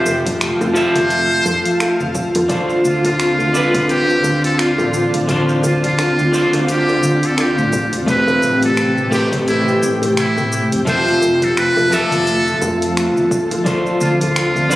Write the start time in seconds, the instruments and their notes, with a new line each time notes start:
Already playing: clean electric guitar F3 F4 A4 E5, ambient pad A3 F4, muted trumpet C5
0.06 fingered electric bass F1, high bongo, cabasa
0.26 kick, open hi-hat, low conga, cabasa
0.41 finger snap, open hi-hat, cabasa
0.61 fingered electric bass F1, high bongo, cabasa
0.74 clean electric guitar F3 F4 A4 E5, muted trumpet C5, cabasa
0.95 fingered electric bass F1, open hi-hat, high bongo, high conga, cabasa
1.10 open hi-hat, cabasa
1.31 cabasa
1.45 fingered electric bass F2, high bongo, low conga, cabasa
1.66 open hi-hat, cabasa
1.80 finger snap, open hi-hat, high bongo, cabasa
2.00 fingered electric bass F1, high conga, cabasa
2.15 kick, cabasa
2.35 fingered electric bass F2, open hi-hat, high bongo, high conga, cabasa
2.48 clean electric guitar D3 D4 F4 C5, ambient pad D3 C4, kick, open hi-hat, high bongo, cabasa
2.70 cabasa
2.85 fingered electric bass D2, muted trumpet F4, cabasa
3.04 muted trumpet F4, open hi-hat, high bongo, low conga, cabasa
3.20 finger snap, open hi-hat, cabasa
3.39 fingered electric bass D2, high bongo, cabasa
3.53 clean electric guitar D3 D4 F4 B4, cabasa
3.74 fingered electric bass D2, kick, open hi-hat, high conga, cabasa
3.88 muted trumpet G4, open hi-hat, high bongo, cabasa
4.09 cabasa
4.24 fingered electric bass D2, high bongo, low conga, cabasa
4.44 muted trumpet A4, open hi-hat, cabasa
4.59 muted trumpet F4, finger snap, open hi-hat, cabasa
4.78 fingered electric bass A1, high bongo, high conga, cabasa
4.94 cabasa
5.14 fingered electric bass A1, open hi-hat, high bongo, cabasa
5.27 clean electric guitar D3 D4 F4 C5, kick, open hi-hat, cabasa
5.49 cabasa
5.63 fingered electric bass D2, muted trumpet F4, high bongo, cabasa
5.84 muted trumpet F4, kick, open hi-hat, low conga, cabasa
5.98 finger snap, open hi-hat, high bongo, cabasa
6.19 fingered electric bass D2, cabasa
6.32 clean electric guitar D3 D4 F4 C5, cabasa
6.53 fingered electric bass D2, open hi-hat, high bongo, high conga, cabasa
6.68 muted trumpet G4, open hi-hat, cabasa
6.89 high bongo, cabasa
7.03 fingered electric bass D2, low conga, cabasa
7.23 muted trumpet A4, open hi-hat, cabasa
7.38 muted trumpet G4, finger snap, open hi-hat, high bongo, cabasa
7.58 fingered electric bass A2, high conga, cabasa
7.73 ambient pad C3 G4, kick, high bongo, cabasa
7.93 fingered electric bass E1, open hi-hat, cabasa
8.06 clean electric guitar A3 C4 G4 B4, muted trumpet B4, kick, open hi-hat, cabasa
8.28 high bongo, cabasa
8.43 fingered electric bass A1, cabasa
8.62 muted trumpet A4, open hi-hat, high bongo, low conga, cabasa
8.77 finger snap, open hi-hat, cabasa
8.98 fingered electric bass A1, cabasa
9.11 clean electric guitar A3 G4 B4 C5, muted trumpet G4, high bongo, cabasa
9.32 fingered electric bass A1, kick, open hi-hat, high conga, cabasa
9.48 muted trumpet E4, open hi-hat, high bongo, cabasa
9.68 cabasa
9.82 fingered electric bass A1, low conga, cabasa
10.02 open hi-hat, high bongo, cabasa
10.17 muted trumpet E4, finger snap, open hi-hat, cabasa
10.37 fingered electric bass A2, high bongo, high conga, cabasa
10.52 cabasa
10.72 fingered electric bass F1, open hi-hat, cabasa
10.85 clean electric guitar F3 F4 A4 E5, ambient pad F3 A3, muted trumpet C5, kick, open hi-hat, high bongo, cabasa
11.08 cabasa
11.22 fingered electric bass F1, high bongo, cabasa
11.42 muted trumpet A4, kick, open hi-hat, low conga, cabasa
11.57 muted trumpet B4, finger snap, open hi-hat, cabasa
11.77 fingered electric bass F1, high bongo, cabasa
11.91 clean electric guitar F3 F4 A4 E5, muted trumpet A4, cabasa
12.11 fingered electric bass F1, open hi-hat, high bongo, high conga, cabasa
12.27 open hi-hat, cabasa
12.47 cabasa
12.62 fingered electric bass F2, high bongo, low conga, cabasa
12.82 open hi-hat, cabasa
12.97 finger snap, open hi-hat, high bongo, cabasa
13.16 fingered electric bass F1, high conga, cabasa
13.31 kick, cabasa
13.51 fingered electric bass D2, open hi-hat, high bongo, cabasa
13.64 clean electric guitar D3 D4 F4 C5, ambient pad D3 C4, kick, open hi-hat, high bongo, cabasa
13.86 cabasa
14.01 fingered electric bass D2, muted trumpet F4, cabasa
14.21 muted trumpet F4, open hi-hat, high bongo, low conga, cabasa
14.36 finger snap, open hi-hat, cabasa
14.56 fingered electric bass D2, high bongo, cabasa
14.69 clean electric guitar D3 D4 F4 B4, cabasa